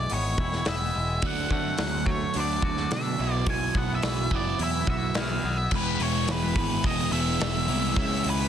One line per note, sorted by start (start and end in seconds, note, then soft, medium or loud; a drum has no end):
0.00 0.96 E3 medium
0.00 0.94 G#3 medium
0.00 0.13 D5 medium
0.10 0.34 G#1 medium
0.10 0.67 B3 medium
0.10 open hi-hat medium
0.14 0.68 C#5 medium
0.38 0.61 E1 medium
0.38 1.23 E4 medium
0.38 kick medium
0.52 snare soft
0.65 0.90 E1 medium
0.65 1.24 B3 medium
0.65 1.26 E5 medium
0.65 snare loud
0.65 open hi-hat medium
0.95 1.18 E1 medium
0.95 1.23 G#3 medium
1.22 1.46 D2 medium
1.22 2.33 D3 medium
1.22 2.64 D3 medium
1.22 2.35 F#3 medium
1.22 2.34 A3 medium
1.22 2.34 D4 loud
1.22 kick loud
1.22 open hi-hat soft
1.27 1.51 F#5 medium
1.51 1.74 D3 medium
1.51 2.08 A3 medium
1.51 2.09 F#5 loud
1.51 kick medium
1.78 2.24 D2 medium
1.78 3.20 F#3 medium
1.78 snare loud
1.78 open hi-hat soft
2.06 3.20 A3 medium
2.06 2.36 C#5 medium
2.06 kick medium
2.34 2.58 D2 medium
2.34 3.17 D3 medium
2.34 3.18 F#3 medium
2.34 3.18 A3 medium
2.34 2.92 D4 medium
2.34 3.19 D4 medium
2.34 open hi-hat medium
2.40 2.93 D5 medium
2.62 2.86 D2 medium
2.62 3.20 F#4 medium
2.62 kick medium
2.77 snare soft
2.91 3.14 B2 medium
2.91 3.20 D4 medium
2.91 3.33 E5 medium
2.91 snare loud
2.91 open hi-hat medium
3.18 3.42 B1 medium
3.18 4.29 B2 medium
3.18 3.46 B2 medium
3.18 4.30 F#3 medium
3.18 4.30 B3 medium
3.18 4.30 E4 medium
3.33 3.45 D5 medium
3.46 3.70 B1 medium
3.46 4.88 B2 medium
3.46 3.78 G#5 loud
3.46 kick loud
3.46 open hi-hat medium
3.75 3.98 B1 medium
3.75 4.32 B3 medium
3.75 3.91 F#5 loud
3.75 kick medium
3.95 4.35 E5 medium
4.02 4.26 B1 medium
4.02 5.45 E3 medium
4.02 snare loud
4.02 open hi-hat medium
4.31 4.54 F#1 medium
4.31 5.43 B2 medium
4.31 5.42 F#3 medium
4.31 5.42 B3 medium
4.31 5.44 B3 medium
4.31 5.42 E4 medium
4.31 kick medium
4.36 4.60 D5 medium
4.59 4.82 E2 medium
4.59 5.15 E4 medium
4.59 open hi-hat medium
4.63 4.89 E5 medium
4.87 5.10 B1 medium
4.87 5.73 F#4 medium
4.87 5.17 E5 medium
4.87 kick medium
5.14 5.38 B1 medium
5.14 5.72 E4 medium
5.14 5.75 E5 medium
5.14 5.56 F#5 medium
5.14 snare loud
5.14 open hi-hat medium
5.44 5.67 B1 medium
5.44 5.73 B3 medium
5.71 5.97 E1 medium
5.71 6.00 E3 medium
5.71 6.00 G#3 loud
5.71 6.00 B3 loud
5.71 6.00 E4 loud
5.71 kick loud
5.71 crash loud
5.75 6.03 B4 medium
6.00 6.25 E1 medium
6.00 6.27 E3 medium
6.00 6.28 G#3 medium
6.00 6.27 B3 medium
6.00 6.28 E4 medium
6.00 6.30 C#5 medium
6.00 open hi-hat medium
6.27 6.53 E1 medium
6.27 6.55 E3 medium
6.27 6.56 G#3 medium
6.27 6.55 B3 medium
6.27 6.57 E4 loud
6.27 6.88 B4 medium
6.27 snare loud
6.27 open hi-hat medium
6.56 6.81 G#1 medium
6.56 6.83 E3 medium
6.56 6.83 G#3 medium
6.56 6.83 B3 medium
6.56 6.84 E4 medium
6.56 kick medium
6.56 open hi-hat medium
6.84 7.09 E1 medium
6.84 7.13 E3 medium
6.84 7.12 G#3 medium
6.84 7.12 B3 medium
6.84 7.13 E4 loud
6.84 7.12 D#5 medium
6.84 kick loud
6.84 open hi-hat medium
7.12 7.37 E1 medium
7.12 7.40 E3 medium
7.12 7.40 G#3 medium
7.12 7.40 B3 medium
7.12 7.42 E4 medium
7.12 7.97 E5 medium
7.12 open hi-hat medium
7.40 7.65 E1 medium
7.40 7.69 E3 medium
7.40 7.69 G#3 medium
7.40 7.69 B3 medium
7.40 7.70 E4 medium
7.40 snare loud
7.40 open hi-hat medium
7.68 7.93 C2 medium
7.68 7.98 E3 medium
7.68 7.96 G#3 medium
7.68 7.96 B3 medium
7.68 7.99 E4 medium
7.68 open hi-hat medium
7.96 8.21 C#2 medium
7.96 8.25 C#3 loud
7.96 8.26 G#3 loud
7.96 8.27 C#4 loud
7.96 8.27 E4 loud
7.96 8.27 E5 medium
7.96 kick loud
7.96 open hi-hat medium
8.24 8.48 C#2 medium
8.24 8.48 C#3 medium
8.24 8.48 G#3 medium
8.24 8.48 C#4 medium
8.24 8.48 E4 medium
8.24 open hi-hat medium
8.30 8.48 B4 medium